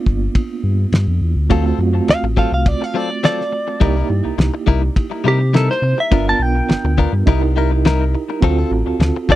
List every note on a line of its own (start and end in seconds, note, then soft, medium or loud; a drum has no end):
0.00 1.46 A#3 medium
0.00 1.46 B3 medium
0.00 1.47 D4 medium
0.00 1.47 F4 medium
0.00 0.33 D5 medium
0.06 0.29 G1 loud
0.06 kick loud
0.35 kick loud
0.35 ride bell medium
0.63 0.86 G2 medium
0.92 1.07 G2 medium
0.92 snare loud
0.92 ride bell medium
1.08 1.20 F2 medium
1.21 1.36 E2 medium
1.36 1.49 D2 medium
1.49 1.73 D2 medium
1.49 1.66 F#3 medium
1.49 3.77 A3 medium
1.49 3.77 C4 medium
1.49 1.66 C4 medium
1.49 3.77 F4 medium
1.49 1.66 F4 loud
1.49 3.78 F#4 medium
1.49 1.65 A4 medium
1.49 kick loud
1.49 ride bell medium
1.66 1.79 C4 soft
1.66 1.79 F4 medium
1.66 1.79 A4 medium
1.78 2.01 F#2 medium
1.78 muted clean electric guitar stroke soft
2.08 2.16 D2 soft
2.08 2.25 F5 loud
2.08 muted clean electric guitar stroke soft
2.08 snare loud
2.08 ride bell medium
2.23 2.45 A1 medium
2.23 muted clean electric guitar stroke soft
2.37 2.53 F#3 medium
2.37 2.53 C4 medium
2.37 2.52 F4 medium
2.37 2.52 A4 medium
2.37 2.53 F5 medium
2.37 kick medium
2.52 2.74 C2 medium
2.52 2.68 F5 medium
2.52 muted clean electric guitar stroke soft
2.66 2.84 D5 medium
2.66 kick loud
2.66 ride bell medium
2.82 2.97 F5 loud
2.82 muted clean electric guitar stroke soft
2.94 3.10 F#3 medium
2.94 3.10 C4 medium
2.94 3.10 F4 medium
2.94 3.09 A4 medium
2.94 3.24 D5 medium
3.10 muted clean electric guitar stroke medium
3.23 3.42 F#3 medium
3.23 3.42 C4 medium
3.23 3.42 F4 medium
3.23 3.42 A4 medium
3.23 4.93 D5 loud
3.23 snare loud
3.23 ride bell medium
3.41 snare soft
3.52 muted clean electric guitar stroke soft
3.68 muted clean electric guitar stroke soft
3.80 4.03 C2 loud
3.80 3.96 G3 medium
3.80 6.07 A#3 medium
3.80 6.07 D#4 medium
3.80 3.96 D#4 medium
3.80 6.08 E4 medium
3.80 3.95 E4 medium
3.80 6.08 G4 medium
3.80 3.95 A#4 medium
3.80 kick loud
3.80 ride bell medium
3.96 4.08 D#4 soft
3.96 4.09 E4 medium
3.96 4.09 A#4 medium
4.09 4.22 G2 medium
4.09 muted clean electric guitar stroke soft
4.25 4.32 C2 soft
4.38 4.50 C2 medium
4.38 muted clean electric guitar stroke soft
4.38 snare loud
4.38 ride bell medium
4.54 muted clean electric guitar stroke soft
4.67 4.90 C2 loud
4.67 4.83 G3 loud
4.67 4.83 D#4 medium
4.67 4.83 E4 loud
4.67 4.82 A#4 medium
4.67 kick medium
4.83 muted clean electric guitar stroke medium
4.96 kick loud
4.96 ride bell medium
5.11 muted clean electric guitar stroke soft
5.24 5.69 C3 medium
5.24 5.40 G3 medium
5.24 5.40 D#4 medium
5.24 5.40 E4 medium
5.24 5.55 G4 medium
5.24 5.39 A#4 medium
5.40 muted clean electric guitar stroke soft
5.53 5.72 G3 medium
5.53 5.72 D#4 medium
5.53 5.73 E4 medium
5.53 5.70 A4 medium
5.53 5.73 A#4 medium
5.53 snare loud
5.53 ride bell medium
5.71 5.98 C5 medium
5.71 snare soft
5.82 5.94 C3 medium
5.82 muted clean electric guitar stroke soft
5.98 6.27 E5 medium
5.98 muted clean electric guitar stroke soft
6.11 6.34 G1 loud
6.11 7.24 B3 medium
6.11 6.27 B3 medium
6.11 7.25 D4 medium
6.11 6.28 D4 medium
6.11 7.25 F4 medium
6.11 6.27 F4 medium
6.11 6.26 A#4 loud
6.11 7.26 A#4 medium
6.11 kick loud
6.11 ride bell medium
6.27 6.40 F4 medium
6.27 6.40 A#4 medium
6.27 6.42 A5 loud
6.39 6.62 B1 medium
6.39 8.10 G5 loud
6.39 muted clean electric guitar stroke soft
6.69 6.77 G1 soft
6.69 muted clean electric guitar stroke soft
6.69 snare loud
6.69 ride bell medium
6.84 7.07 D2 medium
6.84 muted clean electric guitar stroke medium
6.98 7.14 B3 medium
6.98 7.13 D4 medium
6.98 7.13 F4 medium
6.98 7.12 A#4 medium
6.98 kick medium
7.12 7.23 G2 loud
7.12 muted clean electric guitar stroke medium
7.26 8.16 C2 medium
7.26 7.43 G3 medium
7.26 8.40 D#4 medium
7.26 7.43 D#4 loud
7.26 8.40 E4 medium
7.26 7.43 E4 medium
7.26 8.40 G4 medium
7.26 8.41 A#4 medium
7.26 7.42 A#4 loud
7.26 kick loud
7.26 ride bell medium
7.43 muted clean electric guitar stroke soft
7.56 7.72 G3 medium
7.56 7.72 D#4 medium
7.56 7.71 E4 medium
7.56 7.71 A#4 medium
7.72 muted clean electric guitar stroke medium
7.85 8.03 G3 medium
7.85 8.04 D#4 medium
7.85 8.04 E4 medium
7.85 8.04 A#4 loud
7.85 snare loud
7.85 ride bell medium
8.15 muted clean electric guitar stroke soft
8.30 muted clean electric guitar stroke medium
8.40 8.64 D2 loud
8.40 8.58 F#3 medium
8.40 9.36 C4 medium
8.40 8.59 C4 loud
8.40 9.36 F4 medium
8.40 8.58 F4 medium
8.40 9.36 F#4 medium
8.40 9.36 A4 medium
8.40 8.57 A4 loud
8.40 kick loud
8.40 ride bell medium
8.58 8.71 C4 medium
8.58 8.71 F4 medium
8.58 8.71 A4 medium
8.71 8.83 A1 medium
8.71 muted clean electric guitar stroke soft
8.87 8.93 D2 soft
8.99 9.12 D2 medium
8.99 muted clean electric guitar stroke medium
8.99 snare loud
8.99 ride bell medium
9.16 muted clean electric guitar stroke soft
9.28 9.36 D2 loud
9.28 9.36 F#3 medium
9.28 9.36 C4 medium
9.28 9.36 F4 loud
9.28 9.36 A4 loud
9.28 9.36 D5 loud
9.28 kick loud